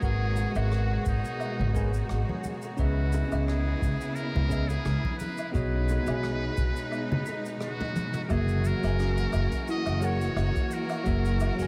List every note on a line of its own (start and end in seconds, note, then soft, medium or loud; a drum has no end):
0.00 0.44 G#1 medium
0.00 2.76 B2 medium
0.00 0.50 G#3 medium
0.00 2.76 G#3 medium
0.00 2.75 F#4 medium
0.00 0.51 G#4 medium
0.00 0.59 G#4 loud
0.00 0.51 A#4 medium
0.00 0.52 B4 medium
0.00 8.32 C#5 medium
0.00 0.52 F#5 medium
0.00 8.32 A#5 medium
0.00 kick loud
0.00 shaker soft
0.36 high bongo medium
0.36 shaker medium
0.52 0.96 G#1 medium
0.52 1.69 G#3 medium
0.52 1.70 G#4 medium
0.52 1.71 A#4 medium
0.52 shaker medium
0.56 1.07 F#4 loud
0.56 1.72 B4 medium
0.56 1.73 F#5 medium
0.56 low woodblock medium
0.72 cross-stick medium
0.72 shaker soft
1.06 1.18 G#1 medium
1.06 2.41 D#4 medium
1.06 kick medium
1.06 shaker medium
1.25 shaker soft
1.40 low woodblock medium
1.40 shaker soft
1.59 2.00 G#1 medium
1.59 low conga medium
1.73 1.89 G#3 medium
1.73 1.89 G#4 medium
1.73 1.90 A#4 medium
1.73 1.90 B4 medium
1.73 1.91 G#5 loud
1.73 kick loud
1.73 high bongo medium
1.73 shaker medium
1.94 shaker medium
2.09 2.21 G#1 medium
2.09 cross-stick loud
2.09 shaker soft
2.29 high conga medium
2.44 high conga medium
2.44 shaker medium
2.62 high bongo soft
2.62 shaker medium
2.77 3.20 C#2 medium
2.77 5.53 B3 medium
2.77 3.26 C#4 medium
2.77 5.53 E4 medium
2.77 3.44 F#4 medium
2.77 3.27 G#4 medium
2.77 3.27 B4 medium
2.77 3.28 D#5 medium
2.77 3.28 E5 loud
2.77 kick loud
2.77 shaker soft
2.81 5.53 C#3 medium
3.13 high bongo medium
3.13 shaker medium
3.28 4.47 B3 medium
3.28 4.45 C#4 medium
3.28 4.46 G#4 medium
3.32 3.72 C#2 medium
3.32 4.48 D#5 medium
3.32 4.49 E5 medium
3.32 low woodblock medium
3.32 shaker medium
3.47 4.17 G#4 medium
3.47 cross-stick medium
3.47 shaker soft
3.82 3.93 C#2 medium
3.82 kick loud
3.82 shaker medium
4.01 shaker soft
4.15 4.70 A#4 loud
4.15 shaker soft
4.35 4.75 C#2 medium
4.35 low conga medium
4.49 4.65 C#4 medium
4.49 4.65 G#4 medium
4.49 4.66 B4 medium
4.49 4.66 D#5 medium
4.49 4.66 E5 loud
4.49 kick loud
4.49 shaker medium
4.68 5.17 G#4 loud
4.68 high bongo medium
4.68 shaker medium
4.85 4.97 C#2 medium
4.85 cross-stick medium
4.85 shaker medium
5.04 kick medium
5.04 high conga medium
5.18 5.51 B4 loud
5.18 high conga medium
5.18 shaker medium
5.38 low woodblock medium
5.38 shaker medium
5.52 5.96 B1 loud
5.52 8.28 B2 medium
5.52 8.28 G#3 medium
5.52 6.02 B3 medium
5.52 8.28 D#4 medium
5.52 6.03 F#4 medium
5.52 6.03 G#4 medium
5.52 7.57 B4 loud
5.52 6.03 C#5 medium
5.52 6.04 D#5 loud
5.52 kick loud
5.52 shaker soft
5.89 high bongo medium
5.89 shaker medium
6.03 6.48 B1 medium
6.03 7.21 B3 medium
6.03 7.22 F#4 medium
6.03 7.23 G#4 medium
6.07 7.24 C#5 medium
6.07 7.24 G#5 medium
6.07 low woodblock medium
6.07 shaker medium
6.23 cross-stick medium
6.23 shaker soft
6.57 6.69 B1 medium
6.57 kick loud
6.57 shaker medium
6.76 shaker medium
6.92 low woodblock medium
6.92 shaker soft
7.12 low conga medium
7.26 high bongo medium
7.26 shaker medium
7.46 shaker medium
7.61 8.21 F#4 loud
7.61 cross-stick loud
7.61 shaker medium
7.80 high tom medium
7.80 high bongo medium
7.80 high conga medium
7.96 mid tom medium
7.96 high conga soft
7.96 shaker medium
8.14 mid tom medium
8.14 high bongo soft
8.14 shaker medium
8.25 8.78 F#3 medium
8.25 8.78 F#4 medium
8.25 8.33 A#4 medium
8.30 8.72 F#1 loud
8.30 11.67 E3 medium
8.30 8.63 A#3 medium
8.30 11.67 A#3 medium
8.30 11.67 F#4 medium
8.30 8.79 G#4 medium
8.30 8.68 G#4 loud
8.30 8.79 A#4 medium
8.30 8.80 E5 loud
8.30 kick loud
8.30 closed hi-hat medium
8.30 low woodblock medium
8.30 shaker medium
8.48 shaker soft
8.65 9.69 A#4 loud
8.65 shaker medium
8.79 9.24 F#1 medium
8.79 9.97 F#3 medium
8.79 9.98 F#4 medium
8.79 9.99 G#4 medium
8.84 10.00 A#4 medium
8.84 10.01 G#5 medium
8.84 closed hi-hat medium
8.84 low woodblock medium
8.84 shaker soft
8.99 9.31 C#4 medium
8.99 cross-stick loud
8.99 closed hi-hat medium
8.99 shaker medium
9.18 shaker medium
9.33 9.45 F#1 medium
9.33 low woodblock medium
9.33 shaker medium
9.52 kick medium
9.52 closed hi-hat medium
9.52 shaker soft
9.68 9.89 E4 loud
9.68 10.07 D#5 loud
9.68 closed hi-hat medium
9.68 shaker medium
9.86 10.27 F#1 medium
9.86 low woodblock medium
9.86 shaker medium
10.01 10.16 F#3 loud
10.01 10.17 F#4 medium
10.01 10.34 F#4 loud
10.01 10.17 G#4 medium
10.01 10.18 A#4 medium
10.01 10.18 F#5 loud
10.01 shaker medium
10.05 10.75 C#5 loud
10.21 closed hi-hat medium
10.21 shaker medium
10.36 10.48 F#1 medium
10.36 cross-stick loud
10.36 closed hi-hat medium
10.36 low woodblock medium
10.36 shaker medium
10.56 kick loud
10.56 shaker medium
10.71 11.67 A#4 loud
10.71 shaker medium
10.89 closed hi-hat medium
10.89 low woodblock medium
10.89 shaker soft
11.04 11.48 F#1 medium
11.04 11.54 F#3 medium
11.04 11.39 A#3 medium
11.04 11.54 F#4 medium
11.04 11.54 G#4 medium
11.04 11.55 A#4 medium
11.04 11.55 E5 loud
11.04 kick loud
11.04 closed hi-hat medium
11.04 shaker medium
11.25 shaker medium
11.40 low woodblock medium
11.40 shaker medium
11.55 11.67 F#1 medium
11.55 11.67 F#3 medium
11.55 11.67 F#4 medium
11.59 11.67 G#4 medium
11.59 11.67 A#4 medium
11.59 11.67 G#5 medium
11.59 closed hi-hat medium
11.59 shaker medium